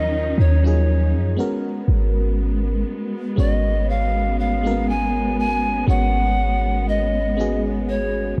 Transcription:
Already playing: D#2 D#3 F3 F#3 C#4 D#4 F4 A#4 D#5
0.38 D#2 C#5
0.63 F#3 C#4 D#4 F4 G#4 C#5
1.15 F#2
1.36 G#3 B3 C#4 F#4 A#4
1.88 G#1
3.36 G#1 G#3 B3 C#4 F#4 C#5 D#5
3.90 F5
4.39 F5
4.63 G#3 A#3 C#4 F#4 A#4
4.71 B3
4.89 G#5
5.39 G#5
5.87 G#1 G#3 B3 C#4 F#4 C#5 F#5
6.89 D#5
7.37 G#3 B3 C#4 F#4 G#4
7.89 C#5

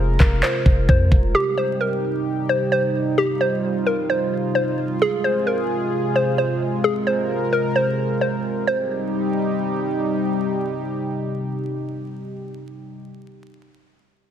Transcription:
Already playing: F1 C3 G#3 F4 A#4
0.20 F1 A#4, kick, clap
0.43 C5, clap
0.66 F1, kick
0.89 F2 C5, kick
1.12 F1, kick
1.35 G3 D#4 G4
1.57 C5
1.81 A#4
2.49 C5
2.72 C5
3.18 F4 G4
3.41 C5
3.87 A#4
4.10 C5
4.55 C5
5.01 C3 G#3 G#4
5.24 C5
5.47 A#4
6.16 C5
6.38 C5
6.84 G#4 A#4
7.07 C5
7.53 A#4
7.76 C5
8.21 C5
8.67 C3 G3 D#4 G4 C5

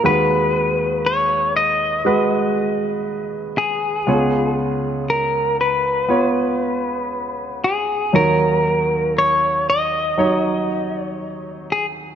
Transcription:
0.04 D#2 D#3 G#3 F#4 B4
1.06 C#5
1.56 D#5
2.05 G#3 F#4 B4
3.58 G#4
4.07 C#2 C#3 B3 F4 C#5
5.10 A#4
5.61 B4
6.09 B3 F4 C#5
7.64 G#4
8.13 D#2 D#3 F#3 D#4 A#4 C#5
9.18 C#5
9.70 D#5
10.18 F#3 D#4 C#5
11.05 C#5
11.72 G#4

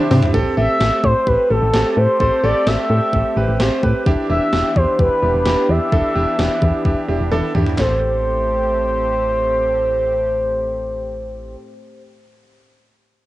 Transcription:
Already playing: C3 C4 D4 E4
0.11 C3 C4 D4 E4 G4 C5 E5, mid tom, open hi-hat
0.22 G3, closed hi-hat, floor tom
0.34 A1 A3 C4 G4 A4, kick
0.57 A1 C4 G4 A4 E5
0.81 A1 C4 G4 A4, snare
1.04 A2 C4 G4 C5, kick
1.27 A1 C4 G4 B4 C5, kick
1.50 A1 C4 G4 A4
1.62 A1
1.74 A1 C4 G4 A4, snare
1.97 A2 C4 G4 A4 C5
2.20 A1 C4 G4 A4 C5, kick
2.44 A1 C4 G4 A4 D5
2.67 A1 C4 G4 A4 E5, snare
2.90 A2 C4 G4 A4
3.13 A1 C4 G4 A4, kick
3.36 A1 C4 G4 B4
3.48 A1
3.60 A1 C4 G4 C5, snare
3.83 A2 C4 G4 B4, kick
4.06 E1 E3 B3 D4 E4 G4, kick
4.30 E1 D4 E4 G4 E5
4.53 E1 D4 E4 G4, snare
4.76 E2 D4 E4 G4 C5, kick
4.99 E1 D4 E4 G4 B4, kick
5.22 E1 D4 E4 G4
5.34 E1
5.46 E1 D4 E4 G4, snare
5.69 E2 D4 E4 G4 E5
5.92 E1 D4 E4 A4, kick
6.15 E1 D4 E4 G4
6.39 E1 D4 E4 G4, snare
6.62 E2 D4 E4 G4, kick
6.85 E1 D4 E4 G4, kick
7.09 E1 D4 E4 G4
7.20 E1
7.32 E1 D4 E4 A4, high tom
7.55 E2 D4 E4 G4, mid tom
7.67 floor tom
7.76 A1 A2 A3 C4 G4 C5, kick, snare, clap
7.81 A4

